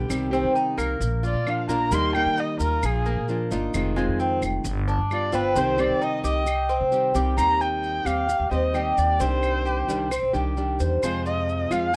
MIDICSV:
0, 0, Header, 1, 7, 480
1, 0, Start_track
1, 0, Key_signature, -3, "minor"
1, 0, Tempo, 455235
1, 102, Time_signature, 4, 2, 24, 8
1, 12611, End_track
2, 0, Start_track
2, 0, Title_t, "Erhu"
2, 0, Program_c, 0, 110
2, 1321, Note_on_c, 0, 74, 75
2, 1573, Note_on_c, 0, 77, 75
2, 1589, Note_off_c, 0, 74, 0
2, 1792, Note_off_c, 0, 77, 0
2, 1798, Note_on_c, 0, 82, 86
2, 2052, Note_on_c, 0, 84, 100
2, 2068, Note_off_c, 0, 82, 0
2, 2267, Note_off_c, 0, 84, 0
2, 2274, Note_on_c, 0, 79, 99
2, 2528, Note_on_c, 0, 75, 83
2, 2544, Note_off_c, 0, 79, 0
2, 2741, Note_off_c, 0, 75, 0
2, 2747, Note_on_c, 0, 70, 84
2, 3006, Note_on_c, 0, 68, 74
2, 3021, Note_off_c, 0, 70, 0
2, 3474, Note_off_c, 0, 68, 0
2, 5412, Note_on_c, 0, 74, 79
2, 5636, Note_on_c, 0, 71, 86
2, 5652, Note_off_c, 0, 74, 0
2, 5889, Note_on_c, 0, 72, 82
2, 5905, Note_off_c, 0, 71, 0
2, 6111, Note_on_c, 0, 74, 83
2, 6126, Note_off_c, 0, 72, 0
2, 6362, Note_on_c, 0, 75, 86
2, 6378, Note_off_c, 0, 74, 0
2, 6576, Note_off_c, 0, 75, 0
2, 6582, Note_on_c, 0, 75, 81
2, 7027, Note_off_c, 0, 75, 0
2, 7782, Note_on_c, 0, 82, 105
2, 8025, Note_on_c, 0, 79, 90
2, 8041, Note_off_c, 0, 82, 0
2, 8511, Note_on_c, 0, 77, 96
2, 8527, Note_off_c, 0, 79, 0
2, 8980, Note_off_c, 0, 77, 0
2, 8986, Note_on_c, 0, 75, 77
2, 9470, Note_on_c, 0, 74, 77
2, 9485, Note_off_c, 0, 75, 0
2, 9713, Note_on_c, 0, 72, 88
2, 9729, Note_off_c, 0, 74, 0
2, 10668, Note_off_c, 0, 72, 0
2, 11629, Note_on_c, 0, 72, 94
2, 11850, Note_off_c, 0, 72, 0
2, 11875, Note_on_c, 0, 75, 93
2, 12353, Note_on_c, 0, 77, 98
2, 12369, Note_off_c, 0, 75, 0
2, 12606, Note_off_c, 0, 77, 0
2, 12611, End_track
3, 0, Start_track
3, 0, Title_t, "Cuban tres"
3, 0, Program_c, 1, 25
3, 0, Note_on_c, 1, 67, 61
3, 327, Note_off_c, 1, 67, 0
3, 346, Note_on_c, 1, 60, 93
3, 577, Note_off_c, 1, 60, 0
3, 584, Note_on_c, 1, 63, 68
3, 816, Note_off_c, 1, 63, 0
3, 820, Note_on_c, 1, 58, 80
3, 1287, Note_off_c, 1, 58, 0
3, 1300, Note_on_c, 1, 65, 76
3, 1767, Note_off_c, 1, 65, 0
3, 1782, Note_on_c, 1, 58, 74
3, 2007, Note_off_c, 1, 58, 0
3, 2019, Note_on_c, 1, 58, 72
3, 2487, Note_off_c, 1, 58, 0
3, 2505, Note_on_c, 1, 63, 76
3, 2737, Note_off_c, 1, 63, 0
3, 2743, Note_on_c, 1, 65, 71
3, 3209, Note_off_c, 1, 65, 0
3, 3224, Note_on_c, 1, 58, 77
3, 3689, Note_off_c, 1, 58, 0
3, 3705, Note_on_c, 1, 63, 74
3, 4170, Note_off_c, 1, 63, 0
3, 4178, Note_on_c, 1, 56, 90
3, 4413, Note_off_c, 1, 56, 0
3, 4426, Note_on_c, 1, 60, 70
3, 4657, Note_off_c, 1, 60, 0
3, 5141, Note_on_c, 1, 62, 70
3, 5607, Note_off_c, 1, 62, 0
3, 5619, Note_on_c, 1, 60, 83
3, 5845, Note_off_c, 1, 60, 0
3, 5857, Note_on_c, 1, 60, 70
3, 6324, Note_off_c, 1, 60, 0
3, 6343, Note_on_c, 1, 63, 73
3, 6574, Note_off_c, 1, 63, 0
3, 6580, Note_on_c, 1, 67, 81
3, 7045, Note_off_c, 1, 67, 0
3, 7057, Note_on_c, 1, 60, 81
3, 7524, Note_off_c, 1, 60, 0
3, 7543, Note_on_c, 1, 67, 72
3, 7765, Note_off_c, 1, 67, 0
3, 7778, Note_on_c, 1, 67, 56
3, 8011, Note_off_c, 1, 67, 0
3, 8017, Note_on_c, 1, 63, 67
3, 8484, Note_off_c, 1, 63, 0
3, 8500, Note_on_c, 1, 67, 65
3, 8966, Note_off_c, 1, 67, 0
3, 8976, Note_on_c, 1, 72, 62
3, 9211, Note_off_c, 1, 72, 0
3, 9217, Note_on_c, 1, 67, 67
3, 9685, Note_off_c, 1, 67, 0
3, 9698, Note_on_c, 1, 60, 65
3, 10166, Note_off_c, 1, 60, 0
3, 10179, Note_on_c, 1, 67, 67
3, 10646, Note_off_c, 1, 67, 0
3, 10664, Note_on_c, 1, 60, 80
3, 10896, Note_off_c, 1, 60, 0
3, 10907, Note_on_c, 1, 67, 69
3, 11371, Note_off_c, 1, 67, 0
3, 11388, Note_on_c, 1, 72, 68
3, 11619, Note_off_c, 1, 72, 0
3, 11631, Note_on_c, 1, 68, 59
3, 11861, Note_off_c, 1, 68, 0
3, 11869, Note_on_c, 1, 65, 64
3, 12333, Note_off_c, 1, 65, 0
3, 12344, Note_on_c, 1, 68, 64
3, 12611, Note_off_c, 1, 68, 0
3, 12611, End_track
4, 0, Start_track
4, 0, Title_t, "Nylon-string guitar"
4, 0, Program_c, 2, 24
4, 88, Note_on_c, 2, 48, 69
4, 97, Note_on_c, 2, 51, 69
4, 100, Note_on_c, 2, 55, 69
4, 107, Note_on_c, 2, 60, 74
4, 110, Note_on_c, 2, 67, 71
4, 315, Note_off_c, 2, 67, 0
4, 325, Note_off_c, 2, 48, 0
4, 325, Note_off_c, 2, 60, 0
4, 327, Note_on_c, 2, 67, 66
4, 330, Note_off_c, 2, 51, 0
4, 331, Note_off_c, 2, 55, 0
4, 337, Note_on_c, 2, 60, 64
4, 346, Note_on_c, 2, 55, 61
4, 354, Note_on_c, 2, 51, 60
4, 1046, Note_off_c, 2, 67, 0
4, 1051, Note_off_c, 2, 60, 0
4, 1053, Note_off_c, 2, 51, 0
4, 1054, Note_off_c, 2, 55, 0
4, 1540, Note_on_c, 2, 53, 53
4, 1547, Note_on_c, 2, 58, 58
4, 1554, Note_on_c, 2, 62, 59
4, 1563, Note_on_c, 2, 65, 59
4, 1768, Note_off_c, 2, 65, 0
4, 1772, Note_off_c, 2, 53, 0
4, 1776, Note_off_c, 2, 58, 0
4, 1779, Note_off_c, 2, 62, 0
4, 1781, Note_on_c, 2, 65, 56
4, 1796, Note_on_c, 2, 62, 65
4, 1803, Note_on_c, 2, 58, 53
4, 2013, Note_off_c, 2, 65, 0
4, 2020, Note_off_c, 2, 62, 0
4, 2020, Note_on_c, 2, 51, 76
4, 2022, Note_off_c, 2, 58, 0
4, 2028, Note_on_c, 2, 55, 81
4, 2034, Note_on_c, 2, 58, 77
4, 2040, Note_on_c, 2, 63, 79
4, 2042, Note_on_c, 2, 67, 83
4, 2252, Note_off_c, 2, 51, 0
4, 2255, Note_off_c, 2, 67, 0
4, 2256, Note_off_c, 2, 55, 0
4, 2259, Note_off_c, 2, 58, 0
4, 2262, Note_off_c, 2, 63, 0
4, 2268, Note_on_c, 2, 67, 67
4, 2278, Note_on_c, 2, 63, 67
4, 2287, Note_on_c, 2, 58, 67
4, 2295, Note_on_c, 2, 55, 61
4, 2976, Note_off_c, 2, 58, 0
4, 2976, Note_off_c, 2, 67, 0
4, 2981, Note_off_c, 2, 63, 0
4, 2982, Note_off_c, 2, 55, 0
4, 3462, Note_on_c, 2, 53, 50
4, 3469, Note_on_c, 2, 58, 61
4, 3477, Note_on_c, 2, 62, 60
4, 3484, Note_on_c, 2, 65, 64
4, 3693, Note_off_c, 2, 53, 0
4, 3696, Note_off_c, 2, 58, 0
4, 3698, Note_off_c, 2, 65, 0
4, 3701, Note_off_c, 2, 62, 0
4, 3710, Note_on_c, 2, 65, 65
4, 3717, Note_on_c, 2, 62, 64
4, 3726, Note_on_c, 2, 58, 56
4, 3937, Note_off_c, 2, 65, 0
4, 3940, Note_off_c, 2, 62, 0
4, 3945, Note_off_c, 2, 58, 0
4, 3949, Note_on_c, 2, 48, 63
4, 3950, Note_on_c, 2, 51, 74
4, 3959, Note_on_c, 2, 56, 85
4, 3961, Note_on_c, 2, 60, 72
4, 3966, Note_on_c, 2, 65, 82
4, 4171, Note_off_c, 2, 65, 0
4, 4176, Note_off_c, 2, 48, 0
4, 4177, Note_off_c, 2, 51, 0
4, 4178, Note_off_c, 2, 60, 0
4, 4181, Note_off_c, 2, 56, 0
4, 4183, Note_on_c, 2, 65, 77
4, 4191, Note_on_c, 2, 60, 71
4, 4195, Note_on_c, 2, 56, 59
4, 4201, Note_on_c, 2, 51, 59
4, 4893, Note_off_c, 2, 65, 0
4, 4896, Note_off_c, 2, 60, 0
4, 4898, Note_off_c, 2, 56, 0
4, 4901, Note_off_c, 2, 51, 0
4, 5384, Note_on_c, 2, 55, 60
4, 5394, Note_on_c, 2, 59, 55
4, 5406, Note_on_c, 2, 65, 68
4, 5602, Note_off_c, 2, 65, 0
4, 5613, Note_off_c, 2, 55, 0
4, 5615, Note_on_c, 2, 65, 68
4, 5618, Note_off_c, 2, 59, 0
4, 5635, Note_on_c, 2, 59, 55
4, 5848, Note_off_c, 2, 65, 0
4, 5857, Note_on_c, 2, 48, 77
4, 5858, Note_off_c, 2, 59, 0
4, 5865, Note_on_c, 2, 51, 81
4, 5869, Note_on_c, 2, 55, 73
4, 5874, Note_on_c, 2, 60, 78
4, 5880, Note_on_c, 2, 67, 76
4, 6080, Note_off_c, 2, 67, 0
4, 6089, Note_off_c, 2, 48, 0
4, 6092, Note_on_c, 2, 67, 78
4, 6093, Note_off_c, 2, 51, 0
4, 6094, Note_off_c, 2, 60, 0
4, 6095, Note_off_c, 2, 55, 0
4, 6107, Note_on_c, 2, 60, 67
4, 6109, Note_on_c, 2, 55, 62
4, 6121, Note_on_c, 2, 51, 56
4, 6799, Note_off_c, 2, 51, 0
4, 6801, Note_off_c, 2, 55, 0
4, 6801, Note_off_c, 2, 60, 0
4, 6806, Note_off_c, 2, 67, 0
4, 7286, Note_on_c, 2, 51, 52
4, 7297, Note_on_c, 2, 55, 56
4, 7303, Note_on_c, 2, 60, 55
4, 7312, Note_on_c, 2, 67, 71
4, 7522, Note_off_c, 2, 67, 0
4, 7523, Note_off_c, 2, 51, 0
4, 7529, Note_off_c, 2, 55, 0
4, 7531, Note_off_c, 2, 60, 0
4, 7535, Note_on_c, 2, 67, 57
4, 7542, Note_on_c, 2, 60, 67
4, 7543, Note_on_c, 2, 55, 65
4, 7550, Note_on_c, 2, 51, 51
4, 7756, Note_off_c, 2, 51, 0
4, 7765, Note_off_c, 2, 55, 0
4, 7768, Note_off_c, 2, 67, 0
4, 7768, Note_on_c, 2, 51, 71
4, 7771, Note_off_c, 2, 60, 0
4, 7777, Note_on_c, 2, 55, 64
4, 7786, Note_on_c, 2, 60, 74
4, 7793, Note_on_c, 2, 67, 76
4, 8484, Note_off_c, 2, 51, 0
4, 8487, Note_off_c, 2, 67, 0
4, 8492, Note_on_c, 2, 67, 69
4, 8498, Note_off_c, 2, 60, 0
4, 8502, Note_on_c, 2, 60, 56
4, 8507, Note_off_c, 2, 55, 0
4, 8511, Note_on_c, 2, 55, 52
4, 8726, Note_off_c, 2, 67, 0
4, 8731, Note_off_c, 2, 60, 0
4, 8732, Note_off_c, 2, 55, 0
4, 8983, Note_on_c, 2, 67, 53
4, 8995, Note_on_c, 2, 60, 54
4, 9001, Note_on_c, 2, 55, 45
4, 9212, Note_off_c, 2, 55, 0
4, 9212, Note_off_c, 2, 67, 0
4, 9218, Note_off_c, 2, 60, 0
4, 9218, Note_on_c, 2, 51, 47
4, 9225, Note_on_c, 2, 55, 62
4, 9235, Note_on_c, 2, 60, 53
4, 9240, Note_on_c, 2, 67, 54
4, 9690, Note_off_c, 2, 51, 0
4, 9694, Note_off_c, 2, 55, 0
4, 9699, Note_off_c, 2, 60, 0
4, 9701, Note_off_c, 2, 67, 0
4, 9709, Note_on_c, 2, 48, 65
4, 9715, Note_on_c, 2, 51, 67
4, 9716, Note_on_c, 2, 55, 69
4, 9723, Note_on_c, 2, 62, 69
4, 9728, Note_on_c, 2, 67, 82
4, 10410, Note_off_c, 2, 67, 0
4, 10416, Note_off_c, 2, 48, 0
4, 10416, Note_off_c, 2, 62, 0
4, 10420, Note_off_c, 2, 51, 0
4, 10420, Note_off_c, 2, 55, 0
4, 10422, Note_on_c, 2, 67, 64
4, 10428, Note_on_c, 2, 62, 62
4, 10439, Note_on_c, 2, 55, 65
4, 10443, Note_on_c, 2, 51, 56
4, 10645, Note_off_c, 2, 51, 0
4, 10647, Note_off_c, 2, 62, 0
4, 10649, Note_off_c, 2, 55, 0
4, 10653, Note_off_c, 2, 67, 0
4, 10896, Note_on_c, 2, 67, 64
4, 10901, Note_on_c, 2, 62, 59
4, 10911, Note_on_c, 2, 55, 53
4, 10913, Note_on_c, 2, 51, 51
4, 11130, Note_off_c, 2, 51, 0
4, 11130, Note_off_c, 2, 67, 0
4, 11133, Note_off_c, 2, 62, 0
4, 11137, Note_off_c, 2, 55, 0
4, 11142, Note_on_c, 2, 51, 56
4, 11152, Note_on_c, 2, 55, 54
4, 11157, Note_on_c, 2, 62, 57
4, 11163, Note_on_c, 2, 67, 61
4, 11614, Note_off_c, 2, 51, 0
4, 11619, Note_off_c, 2, 55, 0
4, 11621, Note_off_c, 2, 62, 0
4, 11624, Note_off_c, 2, 67, 0
4, 11632, Note_on_c, 2, 48, 63
4, 11638, Note_on_c, 2, 53, 81
4, 11641, Note_on_c, 2, 56, 72
4, 11645, Note_on_c, 2, 60, 72
4, 11649, Note_on_c, 2, 65, 75
4, 12339, Note_off_c, 2, 48, 0
4, 12339, Note_off_c, 2, 60, 0
4, 12340, Note_off_c, 2, 65, 0
4, 12344, Note_off_c, 2, 56, 0
4, 12345, Note_on_c, 2, 65, 76
4, 12352, Note_on_c, 2, 60, 63
4, 12361, Note_on_c, 2, 56, 59
4, 12364, Note_off_c, 2, 53, 0
4, 12368, Note_on_c, 2, 53, 51
4, 12568, Note_off_c, 2, 53, 0
4, 12575, Note_off_c, 2, 56, 0
4, 12576, Note_off_c, 2, 65, 0
4, 12577, Note_off_c, 2, 60, 0
4, 12611, End_track
5, 0, Start_track
5, 0, Title_t, "Upright bass"
5, 0, Program_c, 3, 32
5, 103, Note_on_c, 3, 36, 89
5, 445, Note_off_c, 3, 36, 0
5, 464, Note_on_c, 3, 48, 74
5, 806, Note_off_c, 3, 48, 0
5, 821, Note_on_c, 3, 36, 78
5, 1050, Note_off_c, 3, 36, 0
5, 1063, Note_on_c, 3, 34, 100
5, 1405, Note_off_c, 3, 34, 0
5, 1416, Note_on_c, 3, 46, 78
5, 1762, Note_off_c, 3, 46, 0
5, 1777, Note_on_c, 3, 34, 84
5, 2008, Note_off_c, 3, 34, 0
5, 2016, Note_on_c, 3, 39, 99
5, 2362, Note_off_c, 3, 39, 0
5, 2385, Note_on_c, 3, 51, 78
5, 2726, Note_off_c, 3, 51, 0
5, 2738, Note_on_c, 3, 39, 79
5, 2969, Note_off_c, 3, 39, 0
5, 2982, Note_on_c, 3, 34, 98
5, 3325, Note_off_c, 3, 34, 0
5, 3341, Note_on_c, 3, 46, 79
5, 3684, Note_off_c, 3, 46, 0
5, 3703, Note_on_c, 3, 31, 90
5, 3931, Note_off_c, 3, 31, 0
5, 3944, Note_on_c, 3, 29, 89
5, 4285, Note_off_c, 3, 29, 0
5, 4303, Note_on_c, 3, 41, 71
5, 4645, Note_off_c, 3, 41, 0
5, 4659, Note_on_c, 3, 29, 89
5, 4889, Note_off_c, 3, 29, 0
5, 4896, Note_on_c, 3, 31, 110
5, 5241, Note_off_c, 3, 31, 0
5, 5256, Note_on_c, 3, 43, 76
5, 5600, Note_off_c, 3, 43, 0
5, 5620, Note_on_c, 3, 31, 93
5, 5848, Note_off_c, 3, 31, 0
5, 5858, Note_on_c, 3, 36, 93
5, 6201, Note_off_c, 3, 36, 0
5, 6220, Note_on_c, 3, 48, 68
5, 6562, Note_off_c, 3, 48, 0
5, 6576, Note_on_c, 3, 36, 86
5, 7148, Note_off_c, 3, 36, 0
5, 7178, Note_on_c, 3, 48, 86
5, 7521, Note_off_c, 3, 48, 0
5, 7535, Note_on_c, 3, 36, 99
5, 7765, Note_off_c, 3, 36, 0
5, 7783, Note_on_c, 3, 39, 101
5, 8466, Note_off_c, 3, 39, 0
5, 8498, Note_on_c, 3, 39, 64
5, 8841, Note_off_c, 3, 39, 0
5, 8856, Note_on_c, 3, 39, 79
5, 8972, Note_off_c, 3, 39, 0
5, 8978, Note_on_c, 3, 39, 90
5, 9435, Note_off_c, 3, 39, 0
5, 9468, Note_on_c, 3, 39, 84
5, 9693, Note_off_c, 3, 39, 0
5, 9704, Note_on_c, 3, 36, 99
5, 10387, Note_off_c, 3, 36, 0
5, 10423, Note_on_c, 3, 36, 78
5, 10765, Note_off_c, 3, 36, 0
5, 10785, Note_on_c, 3, 36, 75
5, 10898, Note_off_c, 3, 36, 0
5, 10906, Note_on_c, 3, 36, 87
5, 11361, Note_off_c, 3, 36, 0
5, 11390, Note_on_c, 3, 40, 91
5, 11615, Note_off_c, 3, 40, 0
5, 11632, Note_on_c, 3, 41, 98
5, 12313, Note_off_c, 3, 41, 0
5, 12346, Note_on_c, 3, 41, 73
5, 12611, Note_off_c, 3, 41, 0
5, 12611, End_track
6, 0, Start_track
6, 0, Title_t, "Muted nylon-string guitar strokes"
6, 1057, Note_on_c, 9, 29, 61
6, 1163, Note_off_c, 9, 29, 0
6, 2986, Note_on_c, 9, 29, 63
6, 3092, Note_off_c, 9, 29, 0
6, 4909, Note_on_c, 9, 29, 64
6, 5015, Note_off_c, 9, 29, 0
6, 6805, Note_on_c, 9, 29, 59
6, 6911, Note_off_c, 9, 29, 0
6, 8737, Note_on_c, 9, 29, 58
6, 8842, Note_off_c, 9, 29, 0
6, 10652, Note_on_c, 9, 29, 58
6, 10758, Note_off_c, 9, 29, 0
6, 12611, End_track
7, 0, Start_track
7, 0, Title_t, "Drums"
7, 104, Note_on_c, 9, 75, 63
7, 108, Note_on_c, 9, 70, 82
7, 210, Note_off_c, 9, 75, 0
7, 213, Note_off_c, 9, 70, 0
7, 352, Note_on_c, 9, 70, 28
7, 457, Note_off_c, 9, 70, 0
7, 592, Note_on_c, 9, 70, 24
7, 698, Note_off_c, 9, 70, 0
7, 829, Note_on_c, 9, 75, 67
7, 835, Note_on_c, 9, 70, 70
7, 934, Note_off_c, 9, 75, 0
7, 941, Note_off_c, 9, 70, 0
7, 1072, Note_on_c, 9, 70, 70
7, 1177, Note_off_c, 9, 70, 0
7, 1312, Note_on_c, 9, 70, 28
7, 1418, Note_off_c, 9, 70, 0
7, 1547, Note_on_c, 9, 75, 73
7, 1550, Note_on_c, 9, 70, 32
7, 1653, Note_off_c, 9, 75, 0
7, 1655, Note_off_c, 9, 70, 0
7, 1787, Note_on_c, 9, 70, 75
7, 1892, Note_off_c, 9, 70, 0
7, 2023, Note_on_c, 9, 70, 95
7, 2128, Note_off_c, 9, 70, 0
7, 2263, Note_on_c, 9, 70, 31
7, 2266, Note_on_c, 9, 75, 73
7, 2369, Note_off_c, 9, 70, 0
7, 2371, Note_off_c, 9, 75, 0
7, 2503, Note_on_c, 9, 70, 28
7, 2608, Note_off_c, 9, 70, 0
7, 2740, Note_on_c, 9, 70, 79
7, 2846, Note_off_c, 9, 70, 0
7, 2981, Note_on_c, 9, 70, 74
7, 2984, Note_on_c, 9, 75, 75
7, 3087, Note_off_c, 9, 70, 0
7, 3090, Note_off_c, 9, 75, 0
7, 3223, Note_on_c, 9, 70, 27
7, 3329, Note_off_c, 9, 70, 0
7, 3464, Note_on_c, 9, 70, 31
7, 3569, Note_off_c, 9, 70, 0
7, 3704, Note_on_c, 9, 70, 72
7, 3810, Note_off_c, 9, 70, 0
7, 3943, Note_on_c, 9, 70, 92
7, 3946, Note_on_c, 9, 75, 73
7, 4049, Note_off_c, 9, 70, 0
7, 4051, Note_off_c, 9, 75, 0
7, 4190, Note_on_c, 9, 70, 31
7, 4295, Note_off_c, 9, 70, 0
7, 4426, Note_on_c, 9, 70, 27
7, 4531, Note_off_c, 9, 70, 0
7, 4664, Note_on_c, 9, 70, 67
7, 4666, Note_on_c, 9, 75, 62
7, 4770, Note_off_c, 9, 70, 0
7, 4772, Note_off_c, 9, 75, 0
7, 4901, Note_on_c, 9, 70, 86
7, 5006, Note_off_c, 9, 70, 0
7, 5145, Note_on_c, 9, 70, 29
7, 5251, Note_off_c, 9, 70, 0
7, 5386, Note_on_c, 9, 70, 31
7, 5389, Note_on_c, 9, 75, 69
7, 5492, Note_off_c, 9, 70, 0
7, 5494, Note_off_c, 9, 75, 0
7, 5617, Note_on_c, 9, 70, 65
7, 5722, Note_off_c, 9, 70, 0
7, 5863, Note_on_c, 9, 70, 84
7, 5968, Note_off_c, 9, 70, 0
7, 6099, Note_on_c, 9, 70, 31
7, 6106, Note_on_c, 9, 75, 67
7, 6205, Note_off_c, 9, 70, 0
7, 6212, Note_off_c, 9, 75, 0
7, 6345, Note_on_c, 9, 70, 28
7, 6450, Note_off_c, 9, 70, 0
7, 6584, Note_on_c, 9, 70, 75
7, 6690, Note_off_c, 9, 70, 0
7, 6817, Note_on_c, 9, 70, 75
7, 6830, Note_on_c, 9, 75, 75
7, 6923, Note_off_c, 9, 70, 0
7, 6936, Note_off_c, 9, 75, 0
7, 7061, Note_on_c, 9, 70, 28
7, 7167, Note_off_c, 9, 70, 0
7, 7300, Note_on_c, 9, 70, 35
7, 7405, Note_off_c, 9, 70, 0
7, 7540, Note_on_c, 9, 70, 72
7, 7646, Note_off_c, 9, 70, 0
7, 7782, Note_on_c, 9, 75, 66
7, 7783, Note_on_c, 9, 70, 86
7, 7888, Note_off_c, 9, 70, 0
7, 7888, Note_off_c, 9, 75, 0
7, 8026, Note_on_c, 9, 70, 27
7, 8132, Note_off_c, 9, 70, 0
7, 8262, Note_on_c, 9, 70, 25
7, 8368, Note_off_c, 9, 70, 0
7, 8503, Note_on_c, 9, 75, 64
7, 8507, Note_on_c, 9, 70, 68
7, 8609, Note_off_c, 9, 75, 0
7, 8613, Note_off_c, 9, 70, 0
7, 8746, Note_on_c, 9, 70, 79
7, 8851, Note_off_c, 9, 70, 0
7, 8985, Note_on_c, 9, 70, 27
7, 9090, Note_off_c, 9, 70, 0
7, 9224, Note_on_c, 9, 70, 31
7, 9225, Note_on_c, 9, 75, 59
7, 9329, Note_off_c, 9, 70, 0
7, 9330, Note_off_c, 9, 75, 0
7, 9466, Note_on_c, 9, 70, 72
7, 9572, Note_off_c, 9, 70, 0
7, 9703, Note_on_c, 9, 70, 77
7, 9809, Note_off_c, 9, 70, 0
7, 9944, Note_on_c, 9, 75, 61
7, 9945, Note_on_c, 9, 70, 28
7, 10049, Note_off_c, 9, 75, 0
7, 10051, Note_off_c, 9, 70, 0
7, 10188, Note_on_c, 9, 70, 24
7, 10293, Note_off_c, 9, 70, 0
7, 10432, Note_on_c, 9, 70, 78
7, 10537, Note_off_c, 9, 70, 0
7, 10664, Note_on_c, 9, 75, 67
7, 10670, Note_on_c, 9, 70, 74
7, 10770, Note_off_c, 9, 75, 0
7, 10776, Note_off_c, 9, 70, 0
7, 10907, Note_on_c, 9, 70, 28
7, 11012, Note_off_c, 9, 70, 0
7, 11146, Note_on_c, 9, 70, 29
7, 11252, Note_off_c, 9, 70, 0
7, 11384, Note_on_c, 9, 70, 68
7, 11490, Note_off_c, 9, 70, 0
7, 11628, Note_on_c, 9, 75, 66
7, 11631, Note_on_c, 9, 70, 82
7, 11733, Note_off_c, 9, 75, 0
7, 11736, Note_off_c, 9, 70, 0
7, 11870, Note_on_c, 9, 70, 30
7, 11975, Note_off_c, 9, 70, 0
7, 12113, Note_on_c, 9, 70, 26
7, 12219, Note_off_c, 9, 70, 0
7, 12352, Note_on_c, 9, 70, 70
7, 12352, Note_on_c, 9, 75, 62
7, 12457, Note_off_c, 9, 70, 0
7, 12457, Note_off_c, 9, 75, 0
7, 12611, End_track
0, 0, End_of_file